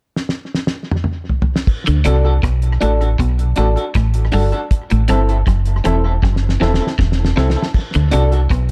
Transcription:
0.16 snare
0.29 snare
0.55 snare
0.67 snare
0.91 mid tom
1.04 mid tom
1.29 floor tom
1.42 floor tom
1.56 snare
1.67 kick, crash
1.87 D2 D3, closed hi-hat
2.04 C2 C3 D4 F#4 A4, closed hi-hat
2.25 D4 F#4 A4
2.43 B1 B2, kick, cross-stick, closed hi-hat
2.62 closed hi-hat
2.81 A1 A2 D4 F#4 A4, closed hi-hat
3.01 D4 F#4 A4, closed hi-hat
3.19 B1 B2, kick, closed hi-hat
3.39 closed hi-hat
3.56 A1 A2 D4 F#4 A4, closed hi-hat
3.76 D4 F#4 A4, closed hi-hat
3.95 A1 A2, kick, cross-stick, closed hi-hat
4.14 F#4 A4, closed hi-hat
4.32 G1 G2 D4 F#4 A4, open hi-hat
4.52 D4 F#4 A4, closed hi-hat
4.71 kick, closed hi-hat
4.90 A1 A2, closed hi-hat
5.08 G1 G2 C4 E4 A4, closed hi-hat
5.29 C4 E4 A4, closed hi-hat
5.47 F#1 F#2, kick, cross-stick, closed hi-hat
5.65 closed hi-hat
5.84 E1 E2 C4 E4 A4, closed hi-hat
6.04 C4 E4 A4
6.23 F#1 F#2, kick, snare
6.36 snare
6.49 snare
6.60 E1 E2 C4 E4 A4, snare
6.74 snare
6.81 C4 E4 A4
6.87 snare
6.99 E1 E2, kick, snare
7.12 snare
7.18 E4 A4
7.25 snare
7.36 C2 C3 C4 E4 A4, snare
7.50 snare
7.56 C4 E4 A4
7.62 snare
7.74 kick, crash
7.94 D2 D3, closed hi-hat
8.11 C2 C3 D4 F#4 A4, closed hi-hat
8.32 D4 F#4 A4, closed hi-hat
8.50 B1 B2, kick, cross-stick, closed hi-hat

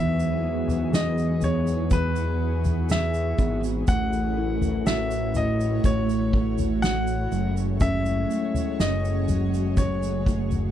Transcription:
Already playing: E2 G#2 E3 F#3 B3 E4 F#4 G#4 E5
0.19 shaker
0.44 B3
0.67 E2, floor tom, shaker
0.92 E2 G#4 D#5, snare, shaker
1.18 shaker
1.41 B3 C#5, floor tom, shaker
1.67 shaker
1.91 E3 B4, kick, floor tom, shaker
2.16 shaker
2.64 floor tom, shaker
2.89 G#4 E5, snare, shaker
3.14 shaker
3.38 G#1 B3, kick, shaker
3.64 shaker
3.87 A1 F#2 E3 A3 C#5 F#5, kick, floor tom, shaker
4.13 shaker
4.38 E4
4.61 floor tom, shaker
4.85 A1 F#4 E5, snare, shaker
5.11 shaker
5.35 E4 D#5, floor tom, shaker
5.60 shaker
5.84 A1 A3 C#5, kick, floor tom, shaker
6.09 shaker
6.33 kick
6.58 floor tom, shaker
6.82 F#4 F#5, snare, shaker
7.07 shaker
7.32 F#1 A2 F#3 G#3 C#4 G#4 C#5, shaker
7.57 shaker
7.80 C#4 E5, kick, floor tom, shaker
8.06 shaker
8.30 A3, shaker
8.54 floor tom, shaker
8.79 F#1 C#4 D#5, snare, shaker
9.05 shaker
9.28 F#3, floor tom, shaker
9.54 shaker
9.77 C#5, kick, floor tom, shaker
10.03 shaker
10.26 A3, kick, shaker
10.51 floor tom, shaker

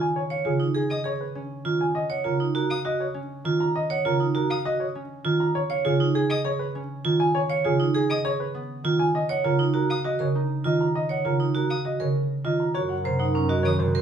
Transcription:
Already playing: C#3 D#3 C#4
0.01 G#5
0.16 C#5
0.30 C#5 F5
0.45 C#3 F4 G#4
0.60 D#4
0.75 G#4
0.90 D#5 D#6
1.04 G#4 C#5
1.21 B4
1.35 C#4
1.65 D#3 F4
1.81 G#5
1.95 D#5
2.10 C#5 F#5
2.24 C#3 F4 A#4
2.40 D#4
2.55 F#4 A#4
2.70 F5 D#6
2.85 F#4 D#5
3.00 C#5
3.14 C#4
3.44 D#3 F4
3.60 A#5
3.76 D#5
3.90 C#5 F#5
4.05 C#3 F4 A#4
4.20 D#4
4.35 F#4 A#4
4.50 F5 D#6
4.65 F#4 D#5
4.80 C#5
4.95 C#4
5.25 D#3 F4
5.40 A#5
5.55 C#5
5.70 C#5 F5
5.85 C#3 F4 G#4
6.00 D#4
6.15 G#4
6.30 D#5 D#6
6.45 G#4 C#5
6.59 B4
6.75 C#4
7.05 D#3 F4
7.20 G#5
7.35 C#5
7.50 C#5 F5
7.65 C#3 F4 G#4
7.80 D#4
7.95 G#4
8.10 D#5 D#6
8.25 G#4 C#5
8.40 B4
8.54 B3
8.84 D#3 F4
8.99 G#5
9.15 D#5
9.29 C#5 F#5
9.44 C#3 F4 A#4
9.59 D#4
9.74 F#4 A#4
9.90 F5 D#6
10.04 F#4 D#5
10.19 C#3 A#4 C#5
10.35 D#4
10.64 D#3 F4 D#5
10.81 A#5
10.95 D#5
11.09 C#5 F#5
11.25 C#3 F4 A#4
11.40 D#4
11.55 F#4 A#4
11.70 F5 D#6
11.85 F#4 D#5
12.00 C#3 A#4 C#5
12.44 D#3 F4 D#5
12.60 A#5
12.74 F#2 F#4 A#4 C#5
12.89 F#5
13.04 C3 A#4 C5
13.19 D#4 F#5
13.34 C#4 A#4
13.49 F#4 D#5
13.63 D#3 C#5 D#6
13.78 C3 F#4 C5
13.95 C4 A#4

